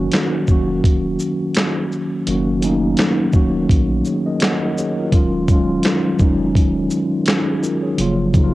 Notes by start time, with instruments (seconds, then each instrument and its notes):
Already playing: tine electric piano D#3 F#3 A#3 C#4 F#4
0.12 snare, clap, closed hi-hat
0.48 sub bass F1, tine electric piano D#3 F#3 A#3 C#4 F#4, kick, shaker
0.84 sub bass D#1, kick, closed hi-hat
1.19 shaker
1.54 snare, clap, closed hi-hat
1.92 shaker
2.26 sub bass F#1, tine electric piano D#3 F#3 A#3 C#4, closed hi-hat
2.30 tine electric piano F#4
2.60 tine electric piano D#3 F#3 A3 C#4, closed hi-hat, shaker
2.64 tine electric piano D#4
2.69 tine electric piano A#3
2.97 snare, clap, closed hi-hat
3.32 sub bass D#1, tine electric piano D#3 F#3 A#3 C#4 F#4, kick, shaker
3.70 sub bass A#1, kick, closed hi-hat
4.05 tine electric piano G#4 C#5, shaker
4.26 tine electric piano A#4 D#5
4.40 tine electric piano C#5 F#5, snare, clap, closed hi-hat
4.62 tine electric piano A#4 D#5
4.78 tine electric piano G#4 C#5, shaker
4.99 tine electric piano F4 A#4
5.11 sub bass D#1, tine electric piano D#3 F#3 G#3 C#4 F4, kick, closed hi-hat
5.48 tine electric piano D#3 F#3 G#3 C#4, kick, closed hi-hat, shaker
5.52 tine electric piano F4
5.83 snare, clap, closed hi-hat
6.19 sub bass F1, tine electric piano D#3 F#3 G#3 C#4, kick, shaker
6.23 tine electric piano D#4
6.55 sub bass D#1, kick, closed hi-hat
6.91 shaker
7.26 tine electric piano C#4 F#4, snare, clap, closed hi-hat
7.47 tine electric piano D#4 G#4
7.63 tine electric piano F4 A#4, shaker
7.82 tine electric piano G#4 C#5
7.97 sub bass F#1, tine electric piano C#3 F3 F#3 A#3, closed hi-hat
8.01 tine electric piano F4
8.33 tine electric piano C#3 F3 F#3 A#3 D#4, kick, closed hi-hat, shaker
8.44 tine electric piano F4